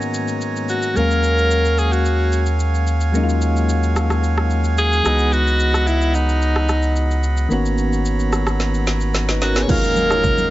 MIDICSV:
0, 0, Header, 1, 8, 480
1, 0, Start_track
1, 0, Key_signature, -6, "minor"
1, 0, Tempo, 545455
1, 847, Time_signature, 4, 2, 24, 8
1, 9242, End_track
2, 0, Start_track
2, 0, Title_t, "Accordion"
2, 0, Program_c, 0, 21
2, 0, Note_on_c, 0, 54, 69
2, 0, Note_on_c, 0, 56, 75
2, 0, Note_on_c, 0, 73, 69
2, 0, Note_on_c, 0, 80, 80
2, 0, Note_on_c, 0, 82, 67
2, 812, Note_off_c, 0, 80, 0
2, 828, Note_off_c, 0, 56, 0
2, 828, Note_off_c, 0, 82, 0
2, 848, Note_on_c, 0, 77, 66
2, 848, Note_on_c, 0, 80, 85
2, 4412, Note_off_c, 0, 73, 0
2, 4412, Note_off_c, 0, 77, 0
2, 4413, Note_off_c, 0, 80, 0
2, 4447, Note_on_c, 0, 75, 66
2, 4447, Note_on_c, 0, 78, 69
2, 4447, Note_on_c, 0, 83, 83
2, 6586, Note_off_c, 0, 75, 0
2, 6586, Note_off_c, 0, 78, 0
2, 6607, Note_on_c, 0, 82, 72
2, 6608, Note_on_c, 0, 73, 70
2, 8492, Note_off_c, 0, 54, 0
2, 8492, Note_off_c, 0, 83, 0
2, 8508, Note_off_c, 0, 73, 0
2, 8508, Note_off_c, 0, 82, 0
2, 8529, Note_on_c, 0, 54, 81
2, 8529, Note_on_c, 0, 61, 72
2, 8529, Note_on_c, 0, 63, 73
2, 8529, Note_on_c, 0, 68, 84
2, 8529, Note_on_c, 0, 77, 70
2, 9242, Note_off_c, 0, 54, 0
2, 9242, Note_off_c, 0, 61, 0
2, 9242, Note_off_c, 0, 63, 0
2, 9242, Note_off_c, 0, 68, 0
2, 9242, Note_off_c, 0, 77, 0
2, 9242, End_track
3, 0, Start_track
3, 0, Title_t, "Alto saxophone"
3, 0, Program_c, 1, 65
3, 612, Note_on_c, 1, 66, 91
3, 851, Note_on_c, 1, 70, 116
3, 865, Note_off_c, 1, 66, 0
3, 1572, Note_on_c, 1, 68, 91
3, 1585, Note_off_c, 1, 70, 0
3, 1696, Note_on_c, 1, 66, 81
3, 1709, Note_off_c, 1, 68, 0
3, 2174, Note_off_c, 1, 66, 0
3, 4212, Note_on_c, 1, 68, 109
3, 4692, Note_on_c, 1, 66, 102
3, 4705, Note_off_c, 1, 68, 0
3, 5173, Note_on_c, 1, 64, 87
3, 5186, Note_off_c, 1, 66, 0
3, 5412, Note_on_c, 1, 63, 86
3, 5425, Note_off_c, 1, 64, 0
3, 6370, Note_off_c, 1, 63, 0
3, 8294, Note_on_c, 1, 66, 94
3, 8473, Note_on_c, 1, 73, 82
3, 8486, Note_off_c, 1, 66, 0
3, 8533, Note_on_c, 1, 70, 121
3, 8546, Note_off_c, 1, 73, 0
3, 9242, Note_off_c, 1, 70, 0
3, 9242, End_track
4, 0, Start_track
4, 0, Title_t, "Synth stab"
4, 0, Program_c, 2, 62
4, 8525, Note_on_c, 2, 63, 95
4, 8526, Note_on_c, 2, 65, 86
4, 8528, Note_on_c, 2, 66, 83
4, 8529, Note_on_c, 2, 68, 88
4, 8531, Note_on_c, 2, 73, 105
4, 8861, Note_off_c, 2, 63, 0
4, 8862, Note_off_c, 2, 65, 0
4, 8863, Note_off_c, 2, 66, 0
4, 8863, Note_off_c, 2, 68, 0
4, 8864, Note_off_c, 2, 73, 0
4, 8890, Note_on_c, 2, 63, 76
4, 8891, Note_on_c, 2, 65, 72
4, 8892, Note_on_c, 2, 66, 66
4, 8894, Note_on_c, 2, 68, 66
4, 8895, Note_on_c, 2, 73, 84
4, 9219, Note_off_c, 2, 63, 0
4, 9219, Note_off_c, 2, 65, 0
4, 9220, Note_off_c, 2, 66, 0
4, 9221, Note_off_c, 2, 68, 0
4, 9221, Note_off_c, 2, 73, 0
4, 9242, End_track
5, 0, Start_track
5, 0, Title_t, "Synth keys"
5, 0, Program_c, 3, 88
5, 0, Control_c, 3, 64, 127
5, 0, Note_on_c, 3, 44, 76
5, 0, Note_on_c, 3, 51, 73
5, 0, Note_on_c, 3, 58, 73
5, 0, Note_on_c, 3, 59, 75
5, 0, Note_on_c, 3, 61, 72
5, 0, Note_on_c, 3, 66, 89
5, 802, Note_off_c, 3, 44, 0
5, 807, Note_off_c, 3, 51, 0
5, 811, Note_off_c, 3, 58, 0
5, 815, Note_off_c, 3, 59, 0
5, 819, Note_off_c, 3, 61, 0
5, 823, Note_off_c, 3, 66, 0
5, 827, Note_on_c, 3, 54, 66
5, 838, Note_on_c, 3, 56, 60
5, 849, Note_on_c, 3, 58, 61
5, 857, Control_c, 3, 64, 0
5, 859, Note_on_c, 3, 61, 63
5, 870, Note_on_c, 3, 77, 71
5, 1023, Control_c, 3, 64, 127
5, 2722, Note_off_c, 3, 54, 0
5, 2727, Note_off_c, 3, 56, 0
5, 2733, Note_off_c, 3, 58, 0
5, 2738, Note_off_c, 3, 61, 0
5, 2743, Note_off_c, 3, 77, 0
5, 2747, Note_on_c, 3, 54, 79
5, 2757, Note_on_c, 3, 56, 74
5, 2768, Note_on_c, 3, 58, 76
5, 2779, Note_on_c, 3, 61, 74
5, 2789, Note_on_c, 3, 63, 70
5, 2838, Note_off_c, 3, 63, 0
5, 2846, Note_on_c, 3, 65, 86
5, 4403, Note_off_c, 3, 54, 0
5, 4409, Note_off_c, 3, 56, 0
5, 4414, Note_off_c, 3, 58, 0
5, 4420, Note_off_c, 3, 61, 0
5, 4427, Note_on_c, 3, 52, 64
5, 4438, Note_on_c, 3, 56, 55
5, 4448, Note_on_c, 3, 59, 60
5, 4454, Note_off_c, 3, 65, 0
5, 4459, Note_on_c, 3, 63, 57
5, 4461, Control_c, 3, 64, 0
5, 4469, Note_on_c, 3, 66, 67
5, 4608, Control_c, 3, 64, 127
5, 6322, Note_off_c, 3, 52, 0
5, 6327, Note_off_c, 3, 56, 0
5, 6333, Note_off_c, 3, 59, 0
5, 6338, Note_off_c, 3, 63, 0
5, 6343, Note_off_c, 3, 66, 0
5, 6587, Note_on_c, 3, 51, 81
5, 6597, Note_on_c, 3, 58, 72
5, 6608, Note_on_c, 3, 59, 73
5, 6619, Control_c, 3, 64, 0
5, 6619, Note_on_c, 3, 61, 72
5, 6629, Note_on_c, 3, 66, 89
5, 6760, Control_c, 3, 64, 127
5, 7778, Note_off_c, 3, 58, 0
5, 7784, Note_off_c, 3, 59, 0
5, 7789, Note_off_c, 3, 61, 0
5, 7795, Note_off_c, 3, 66, 0
5, 8174, Note_on_c, 3, 71, 66
5, 8180, Note_on_c, 3, 63, 56
5, 8243, Note_off_c, 3, 51, 0
5, 8283, Note_off_c, 3, 71, 0
5, 8286, Note_off_c, 3, 63, 0
5, 8289, Note_on_c, 3, 70, 67
5, 8294, Note_on_c, 3, 61, 58
5, 8407, Note_off_c, 3, 70, 0
5, 8410, Note_off_c, 3, 61, 0
5, 8414, Note_on_c, 3, 68, 66
5, 8419, Note_on_c, 3, 59, 54
5, 8508, Note_on_c, 3, 39, 72
5, 8517, Note_on_c, 3, 54, 64
5, 8525, Note_on_c, 3, 56, 65
5, 8534, Note_on_c, 3, 58, 65
5, 8537, Control_c, 3, 64, 0
5, 8542, Note_on_c, 3, 61, 65
5, 8550, Note_on_c, 3, 77, 78
5, 8641, Note_off_c, 3, 68, 0
5, 8644, Note_off_c, 3, 59, 0
5, 8675, Control_c, 3, 64, 127
5, 9242, Note_off_c, 3, 39, 0
5, 9242, Note_off_c, 3, 54, 0
5, 9242, Note_off_c, 3, 56, 0
5, 9242, Note_off_c, 3, 58, 0
5, 9242, Note_off_c, 3, 61, 0
5, 9242, Note_off_c, 3, 77, 0
5, 9242, End_track
6, 0, Start_track
6, 0, Title_t, "Sub bass"
6, 0, Program_c, 4, 38
6, 847, Note_on_c, 4, 39, 82
6, 4412, Note_off_c, 4, 39, 0
6, 4448, Note_on_c, 4, 37, 87
6, 6572, Note_off_c, 4, 37, 0
6, 6608, Note_on_c, 4, 32, 82
6, 8492, Note_off_c, 4, 32, 0
6, 9242, End_track
7, 0, Start_track
7, 0, Title_t, "Impact"
7, 0, Program_c, 5, 103
7, 8528, Note_on_c, 5, 60, 85
7, 9242, Note_off_c, 5, 60, 0
7, 9242, End_track
8, 0, Start_track
8, 0, Title_t, "Drums"
8, 13, Note_on_c, 9, 82, 44
8, 101, Note_off_c, 9, 82, 0
8, 123, Note_on_c, 9, 82, 84
8, 211, Note_off_c, 9, 82, 0
8, 245, Note_on_c, 9, 82, 61
8, 333, Note_off_c, 9, 82, 0
8, 363, Note_on_c, 9, 82, 83
8, 451, Note_off_c, 9, 82, 0
8, 495, Note_on_c, 9, 82, 48
8, 583, Note_off_c, 9, 82, 0
8, 604, Note_on_c, 9, 82, 86
8, 692, Note_off_c, 9, 82, 0
8, 725, Note_on_c, 9, 82, 61
8, 813, Note_off_c, 9, 82, 0
8, 848, Note_on_c, 9, 82, 70
8, 936, Note_off_c, 9, 82, 0
8, 977, Note_on_c, 9, 82, 56
8, 1065, Note_off_c, 9, 82, 0
8, 1085, Note_on_c, 9, 82, 91
8, 1173, Note_off_c, 9, 82, 0
8, 1217, Note_on_c, 9, 82, 55
8, 1305, Note_off_c, 9, 82, 0
8, 1327, Note_on_c, 9, 82, 81
8, 1415, Note_off_c, 9, 82, 0
8, 1453, Note_on_c, 9, 82, 58
8, 1541, Note_off_c, 9, 82, 0
8, 1568, Note_on_c, 9, 82, 96
8, 1656, Note_off_c, 9, 82, 0
8, 1695, Note_on_c, 9, 82, 50
8, 1783, Note_off_c, 9, 82, 0
8, 1809, Note_on_c, 9, 82, 62
8, 1897, Note_off_c, 9, 82, 0
8, 2044, Note_on_c, 9, 82, 87
8, 2132, Note_off_c, 9, 82, 0
8, 2166, Note_on_c, 9, 82, 61
8, 2254, Note_off_c, 9, 82, 0
8, 2285, Note_on_c, 9, 82, 77
8, 2373, Note_off_c, 9, 82, 0
8, 2417, Note_on_c, 9, 82, 49
8, 2505, Note_off_c, 9, 82, 0
8, 2525, Note_on_c, 9, 82, 88
8, 2613, Note_off_c, 9, 82, 0
8, 2646, Note_on_c, 9, 82, 57
8, 2734, Note_off_c, 9, 82, 0
8, 2768, Note_on_c, 9, 82, 75
8, 2856, Note_off_c, 9, 82, 0
8, 2897, Note_on_c, 9, 82, 56
8, 2985, Note_off_c, 9, 82, 0
8, 3005, Note_on_c, 9, 82, 94
8, 3093, Note_off_c, 9, 82, 0
8, 3137, Note_on_c, 9, 82, 55
8, 3225, Note_off_c, 9, 82, 0
8, 3247, Note_on_c, 9, 82, 79
8, 3335, Note_off_c, 9, 82, 0
8, 3373, Note_on_c, 9, 82, 55
8, 3461, Note_off_c, 9, 82, 0
8, 3487, Note_on_c, 9, 37, 89
8, 3487, Note_on_c, 9, 82, 101
8, 3575, Note_off_c, 9, 37, 0
8, 3575, Note_off_c, 9, 82, 0
8, 3611, Note_on_c, 9, 37, 94
8, 3614, Note_on_c, 9, 82, 47
8, 3699, Note_off_c, 9, 37, 0
8, 3702, Note_off_c, 9, 82, 0
8, 3727, Note_on_c, 9, 82, 65
8, 3815, Note_off_c, 9, 82, 0
8, 3851, Note_on_c, 9, 37, 87
8, 3939, Note_off_c, 9, 37, 0
8, 3963, Note_on_c, 9, 82, 86
8, 4051, Note_off_c, 9, 82, 0
8, 4085, Note_on_c, 9, 82, 61
8, 4173, Note_off_c, 9, 82, 0
8, 4204, Note_on_c, 9, 82, 81
8, 4292, Note_off_c, 9, 82, 0
8, 4336, Note_on_c, 9, 82, 50
8, 4424, Note_off_c, 9, 82, 0
8, 4446, Note_on_c, 9, 82, 83
8, 4451, Note_on_c, 9, 37, 93
8, 4534, Note_off_c, 9, 82, 0
8, 4539, Note_off_c, 9, 37, 0
8, 4566, Note_on_c, 9, 82, 57
8, 4654, Note_off_c, 9, 82, 0
8, 4688, Note_on_c, 9, 82, 71
8, 4776, Note_off_c, 9, 82, 0
8, 4817, Note_on_c, 9, 82, 55
8, 4905, Note_off_c, 9, 82, 0
8, 4925, Note_on_c, 9, 82, 93
8, 5013, Note_off_c, 9, 82, 0
8, 5053, Note_on_c, 9, 37, 92
8, 5057, Note_on_c, 9, 82, 56
8, 5141, Note_off_c, 9, 37, 0
8, 5145, Note_off_c, 9, 82, 0
8, 5167, Note_on_c, 9, 82, 79
8, 5255, Note_off_c, 9, 82, 0
8, 5293, Note_on_c, 9, 82, 55
8, 5381, Note_off_c, 9, 82, 0
8, 5408, Note_on_c, 9, 82, 100
8, 5496, Note_off_c, 9, 82, 0
8, 5535, Note_on_c, 9, 82, 51
8, 5623, Note_off_c, 9, 82, 0
8, 5648, Note_on_c, 9, 82, 64
8, 5736, Note_off_c, 9, 82, 0
8, 5772, Note_on_c, 9, 37, 88
8, 5860, Note_off_c, 9, 37, 0
8, 5884, Note_on_c, 9, 82, 81
8, 5889, Note_on_c, 9, 37, 86
8, 5972, Note_off_c, 9, 82, 0
8, 5977, Note_off_c, 9, 37, 0
8, 6006, Note_on_c, 9, 82, 62
8, 6094, Note_off_c, 9, 82, 0
8, 6124, Note_on_c, 9, 82, 81
8, 6212, Note_off_c, 9, 82, 0
8, 6256, Note_on_c, 9, 82, 50
8, 6344, Note_off_c, 9, 82, 0
8, 6365, Note_on_c, 9, 82, 90
8, 6453, Note_off_c, 9, 82, 0
8, 6485, Note_on_c, 9, 82, 58
8, 6573, Note_off_c, 9, 82, 0
8, 6608, Note_on_c, 9, 82, 73
8, 6696, Note_off_c, 9, 82, 0
8, 6737, Note_on_c, 9, 82, 55
8, 6825, Note_off_c, 9, 82, 0
8, 6845, Note_on_c, 9, 82, 94
8, 6933, Note_off_c, 9, 82, 0
8, 6977, Note_on_c, 9, 82, 54
8, 7065, Note_off_c, 9, 82, 0
8, 7087, Note_on_c, 9, 82, 80
8, 7175, Note_off_c, 9, 82, 0
8, 7212, Note_on_c, 9, 82, 57
8, 7300, Note_off_c, 9, 82, 0
8, 7327, Note_on_c, 9, 37, 89
8, 7327, Note_on_c, 9, 82, 98
8, 7415, Note_off_c, 9, 37, 0
8, 7415, Note_off_c, 9, 82, 0
8, 7451, Note_on_c, 9, 37, 94
8, 7454, Note_on_c, 9, 82, 52
8, 7539, Note_off_c, 9, 37, 0
8, 7542, Note_off_c, 9, 82, 0
8, 7567, Note_on_c, 9, 38, 54
8, 7567, Note_on_c, 9, 82, 66
8, 7655, Note_off_c, 9, 38, 0
8, 7655, Note_off_c, 9, 82, 0
8, 7694, Note_on_c, 9, 82, 47
8, 7782, Note_off_c, 9, 82, 0
8, 7804, Note_on_c, 9, 82, 85
8, 7808, Note_on_c, 9, 38, 66
8, 7892, Note_off_c, 9, 82, 0
8, 7896, Note_off_c, 9, 38, 0
8, 7925, Note_on_c, 9, 82, 61
8, 8013, Note_off_c, 9, 82, 0
8, 8044, Note_on_c, 9, 82, 82
8, 8048, Note_on_c, 9, 38, 76
8, 8132, Note_off_c, 9, 82, 0
8, 8136, Note_off_c, 9, 38, 0
8, 8173, Note_on_c, 9, 38, 71
8, 8176, Note_on_c, 9, 82, 49
8, 8261, Note_off_c, 9, 38, 0
8, 8264, Note_off_c, 9, 82, 0
8, 8285, Note_on_c, 9, 82, 88
8, 8287, Note_on_c, 9, 38, 90
8, 8373, Note_off_c, 9, 82, 0
8, 8375, Note_off_c, 9, 38, 0
8, 8406, Note_on_c, 9, 82, 57
8, 8413, Note_on_c, 9, 38, 84
8, 8494, Note_off_c, 9, 82, 0
8, 8501, Note_off_c, 9, 38, 0
8, 8528, Note_on_c, 9, 36, 116
8, 8528, Note_on_c, 9, 49, 91
8, 8528, Note_on_c, 9, 82, 78
8, 8529, Note_on_c, 9, 64, 72
8, 8616, Note_off_c, 9, 36, 0
8, 8616, Note_off_c, 9, 49, 0
8, 8616, Note_off_c, 9, 82, 0
8, 8617, Note_off_c, 9, 64, 0
8, 8657, Note_on_c, 9, 82, 60
8, 8745, Note_off_c, 9, 82, 0
8, 8765, Note_on_c, 9, 82, 94
8, 8768, Note_on_c, 9, 63, 74
8, 8853, Note_off_c, 9, 82, 0
8, 8856, Note_off_c, 9, 63, 0
8, 8893, Note_on_c, 9, 37, 95
8, 8897, Note_on_c, 9, 82, 56
8, 8981, Note_off_c, 9, 37, 0
8, 8985, Note_off_c, 9, 82, 0
8, 9007, Note_on_c, 9, 82, 86
8, 9009, Note_on_c, 9, 36, 88
8, 9009, Note_on_c, 9, 64, 77
8, 9095, Note_off_c, 9, 82, 0
8, 9097, Note_off_c, 9, 36, 0
8, 9097, Note_off_c, 9, 64, 0
8, 9133, Note_on_c, 9, 63, 68
8, 9134, Note_on_c, 9, 82, 57
8, 9221, Note_off_c, 9, 63, 0
8, 9222, Note_off_c, 9, 82, 0
8, 9242, End_track
0, 0, End_of_file